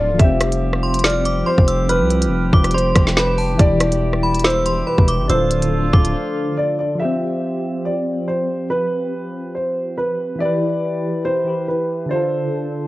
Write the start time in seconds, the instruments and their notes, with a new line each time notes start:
Already playing: 808-style bass D1, synth keys D3 D4 F4 A4, brass ensemble D3 F3 A3 F4
0.00 grand piano D5
0.09 808-style bass C1
0.14 synth keys F3 F4
0.19 808-style bass F1, brass ensemble F3 G3 C4 G4, synth keys G4, grand piano E5, kick, closed hi-hat
0.24 synth keys C4
0.40 cross-stick, closed hi-hat
0.52 closed hi-hat
0.73 cross-stick
0.83 synth bell C6
0.94 closed hi-hat
0.99 closed hi-hat
1.04 grand piano D5, synth bell F6, snare, closed hi-hat
1.10 closed hi-hat
1.25 synth bell D6, closed hi-hat
1.46 grand piano C5, synth bell C6
1.58 808-style bass F1, kick
1.68 synth bell E6, closed hi-hat
1.89 grand piano B4, synth bell F6, closed hi-hat
2.01 808-style bass C2
2.10 closed hi-hat
2.22 closed hi-hat
2.27 808-style bass F1
2.53 808-style bass F1, synth bell D6, kick
2.64 cross-stick, closed hi-hat
2.71 grand piano C5, synth bell C6, closed hi-hat
2.78 closed hi-hat
2.96 808-style bass F1, kick, cross-stick, closed hi-hat
3.07 snare
3.17 grand piano B4, synth bell B5, snare
3.38 synth bell A5, open hi-hat
3.55 synth keys E3 E4
3.59 808-style bass E1, brass ensemble B2 E3, synth keys G4, grand piano D5, kick, closed hi-hat
3.81 cross-stick, closed hi-hat
3.92 closed hi-hat
4.13 cross-stick
4.23 synth bell B5
4.35 closed hi-hat
4.39 closed hi-hat
4.44 grand piano C5, synth bell E6, snare, closed hi-hat
4.50 closed hi-hat
4.66 synth bell C6, closed hi-hat
4.87 grand piano B4, synth bell B5
4.98 808-style bass E1, kick
5.08 synth bell D6, closed hi-hat
5.20 808-style bass G1
5.25 synth keys D3 D4
5.30 808-style bass D1, brass ensemble D3 F3 A3 F4, synth keys F4, grand piano C5, synth bell E6, closed hi-hat
5.34 synth keys A4
5.51 closed hi-hat
5.62 closed hi-hat
5.93 808-style bass D1, synth bell D6, kick
6.05 closed hi-hat
6.57 grand piano D5
6.79 grand piano D5
6.95 synth keys F3 F4
7.00 synth keys G4, grand piano E5
7.05 synth keys C4
7.85 grand piano D5
8.28 grand piano C5
8.70 grand piano B4
9.55 grand piano C5
9.98 grand piano B4
10.35 synth keys E3 E4
10.40 synth keys G4, grand piano D5
10.45 synth keys B4
11.25 grand piano C5
11.44 synth keys E3 E4 G4
11.49 synth keys B4
11.68 grand piano B4
12.06 synth keys D3 D4
12.11 synth keys F4, grand piano C5
12.16 synth keys A4